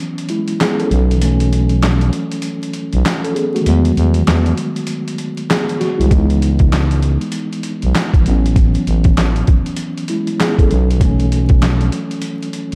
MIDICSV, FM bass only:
0, 0, Header, 1, 2, 480
1, 0, Start_track
1, 0, Tempo, 612245
1, 951, Time_signature, 4, 2, 24, 8
1, 9996, End_track
2, 0, Start_track
2, 0, Title_t, "FM bass"
2, 0, Program_c, 0, 39
2, 714, Note_on_c, 0, 35, 100
2, 1650, Note_off_c, 0, 35, 0
2, 2301, Note_on_c, 0, 35, 96
2, 2378, Note_off_c, 0, 35, 0
2, 2874, Note_on_c, 0, 40, 101
2, 3075, Note_off_c, 0, 40, 0
2, 3114, Note_on_c, 0, 40, 97
2, 3315, Note_off_c, 0, 40, 0
2, 3353, Note_on_c, 0, 40, 88
2, 3555, Note_off_c, 0, 40, 0
2, 4703, Note_on_c, 0, 36, 86
2, 4779, Note_off_c, 0, 36, 0
2, 4792, Note_on_c, 0, 37, 104
2, 5627, Note_off_c, 0, 37, 0
2, 6142, Note_on_c, 0, 35, 89
2, 6219, Note_off_c, 0, 35, 0
2, 6477, Note_on_c, 0, 33, 100
2, 6880, Note_off_c, 0, 33, 0
2, 6955, Note_on_c, 0, 33, 98
2, 7156, Note_off_c, 0, 33, 0
2, 7195, Note_on_c, 0, 33, 86
2, 7396, Note_off_c, 0, 33, 0
2, 8396, Note_on_c, 0, 35, 100
2, 9331, Note_off_c, 0, 35, 0
2, 9996, End_track
0, 0, End_of_file